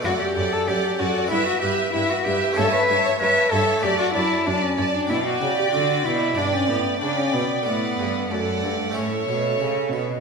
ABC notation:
X:1
M:4/4
L:1/16
Q:1/4=95
K:D
V:1 name="Violin section"
f2 f2 f2 f2 e2 e2 e2 e2 | a2 a2 a2 a2 a2 a2 a2 a2 | g8 g4 g4 | f4 f4 e6 z2 |]
V:2 name="Violin section"
d2 d2 d2 d2 e2 e2 e2 e2 | e2 e2 e2 e2 d2 d2 d2 d2 | d8 d4 d4 | d4 d4 c6 z2 |]
V:3 name="Viola section"
A2 A2 A2 A2 B2 B2 B2 B2 | c2 c2 c2 c2 d2 d2 d2 d2 | d8 d4 d4 | A4 A4 A6 z2 |]
V:4 name="Cello"
F G2 A G2 F2 E F G2 E F G2 | A B2 c B2 A2 G F E2 D C2 D | E F2 G F2 E2 D C B,2 D C B,2 | B,4 A,8 z4 |]
V:5 name="Harpsichord"
[A,DF]8 [B,E]8 | [A,CE]8 [A,D]8 | D8 D8 | D8 [A,CE]8 |]
V:6 name="Harpsichord" clef=bass
F,,2 F,,2 F,,2 F,,2 G,,2 G,,2 G,,2 G,,2 | G,,2 G,,2 G,,2 G,,2 F,,2 F,,2 F,,2 F,,2 | B,,2 C,2 D,2 B,,2 G,,2 A,,2 C,2 B,,2 | A,,2 G,,2 F,,2 G,,2 A,,2 B,,2 C,2 B,,2 |]
V:7 name="Cello section" clef=bass
F,,2 F,,2 F,,2 F,,2 G,,2 G,,2 G,,2 G,,2 | G,,2 G,,2 G,,2 G,,2 F,,2 F,,2 F,,2 F,,2 | B,,2 C,2 D,2 B,,2 G,,2 A,,2 C,2 B,,2 | A,,2 G,,2 F,,2 G,,2 A,,2 B,,2 C,2 B,,2 |]